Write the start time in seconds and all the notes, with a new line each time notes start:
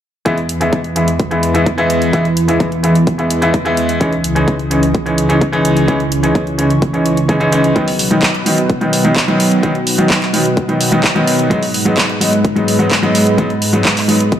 0.25 E2 E3 G#3 B3 E4 G#4 B4, kick, closed hi-hat
0.38 closed hi-hat
0.49 closed hi-hat
0.60 E3 G#3 B3 E4, closed hi-hat
0.73 kick, closed hi-hat
0.84 closed hi-hat
0.96 E3 G#3 B3 E4, closed hi-hat
1.08 closed hi-hat
1.20 kick, closed hi-hat
1.31 E3 G#3 B3 E4, closed hi-hat
1.43 closed hi-hat
1.54 E3 G#3 B3 E4, closed hi-hat
1.66 kick, closed hi-hat
1.78 E3 G#3 B3 E4, closed hi-hat
1.90 closed hi-hat
2.02 closed hi-hat
2.13 E3 G#3 B3 E4, kick, closed hi-hat
2.25 closed hi-hat
2.37 closed hi-hat
2.48 E3 G#3 B3 E4, closed hi-hat
2.60 kick, closed hi-hat
2.72 closed hi-hat
2.83 E3 G#3 B3 E4, closed hi-hat
2.95 closed hi-hat
3.07 kick, closed hi-hat
3.18 E3 G#3 B3 E4, closed hi-hat
3.30 closed hi-hat
3.42 E3 G#3 B3 E4, closed hi-hat
3.54 kick, closed hi-hat
3.65 E3 G#3 B3 E4, closed hi-hat
3.77 closed hi-hat
3.89 closed hi-hat
4.00 C#2 C#3 E3 G#3 C#4 D#4 D#5, kick, closed hi-hat
4.12 closed hi-hat
4.24 closed hi-hat
4.35 E3 G#3 C#4 D#4, closed hi-hat
4.48 kick, closed hi-hat
4.59 closed hi-hat
4.71 E3 G#3 C#4 D#4, closed hi-hat
4.83 closed hi-hat
4.95 kick, closed hi-hat
5.06 E3 G#3 C#4 D#4, closed hi-hat
5.18 closed hi-hat
5.29 E3 G#3 C#4 D#4, closed hi-hat
5.41 kick, closed hi-hat
5.52 E3 G#3 C#4 D#4, closed hi-hat
5.65 closed hi-hat
5.77 closed hi-hat
5.88 E3 G#3 C#4 D#4 C#5, kick, closed hi-hat
6.00 closed hi-hat
6.12 closed hi-hat
6.23 E3 G#3 C#4 D#4, closed hi-hat
6.35 kick, closed hi-hat
6.47 closed hi-hat
6.58 E3 G#3 C#4 D#4, closed hi-hat
6.70 closed hi-hat
6.82 kick, closed hi-hat
6.93 E3 G#3 C#4 D#4, closed hi-hat
7.06 closed hi-hat
7.17 closed hi-hat
7.28 E3 G#3 C#4 D#4, kick, closed hi-hat
7.40 E3 G#3 C#4 D#4, closed hi-hat
7.52 E3 G#3 C#4 D#4, closed hi-hat
7.64 closed hi-hat
7.75 B2 D#3 F#3 B3 D#4 B4 F#5, kick, closed hi-hat
7.88 open hi-hat
7.99 open hi-hat
8.10 D#3 F#3 B3 D#4, closed hi-hat
8.23 kick, clap, closed hi-hat
8.35 closed hi-hat
8.46 D#3 F#3 B3 D#4, open hi-hat
8.58 closed hi-hat
8.70 kick, closed hi-hat
8.81 D#3 F#3 B3 D#4, closed hi-hat
8.93 open hi-hat
9.04 D#3 F#3 B3 D#4, closed hi-hat
9.16 kick, clap, closed hi-hat
9.28 D#3 F#3 B3 D#4, closed hi-hat
9.40 open hi-hat
9.52 closed hi-hat
9.63 D#3 F#3 B3 D#4, kick, closed hi-hat
9.75 closed hi-hat
9.87 open hi-hat
9.98 D#3 F#3 B3 D#4, closed hi-hat
10.10 kick, clap, closed hi-hat
10.22 clap, closed hi-hat
10.33 D#3 F#3 B3 D#4, open hi-hat
10.45 closed hi-hat
10.57 kick, closed hi-hat
10.68 D#3 F#3 B3 D#4, closed hi-hat
10.81 open hi-hat
10.92 D#3 F#3 B3 D#4, closed hi-hat
11.04 kick, clap, closed hi-hat
11.15 D#3 F#3 B3 D#4, closed hi-hat
11.27 open hi-hat
11.39 closed hi-hat
11.50 G#2 F#3 G#3 B3 D#4, kick, closed hi-hat
11.63 open hi-hat
11.74 open hi-hat
11.85 F#3 G#3 B3 D#4, closed hi-hat
11.98 kick, clap, closed hi-hat
12.10 closed hi-hat
12.20 F#3 G#3 B3 D#4, open hi-hat
12.33 closed hi-hat
12.45 kick, closed hi-hat
12.56 F#3 G#3 B3 D#4, closed hi-hat
12.68 open hi-hat
12.79 F#3 G#3 B3 D#4, closed hi-hat
12.91 kick, clap, closed hi-hat
13.03 F#3 G#3 B3 D#4, closed hi-hat
13.15 open hi-hat
13.27 closed hi-hat
13.38 F#3 G#3 B3 D#4, kick, closed hi-hat
13.50 closed hi-hat
13.62 open hi-hat
13.73 F#3 G#3 B3 D#4, closed hi-hat
13.85 kick, clap, closed hi-hat
13.97 clap, open hi-hat
14.08 F#3 G#3 B3 D#4, open hi-hat
14.20 closed hi-hat
14.32 kick, closed hi-hat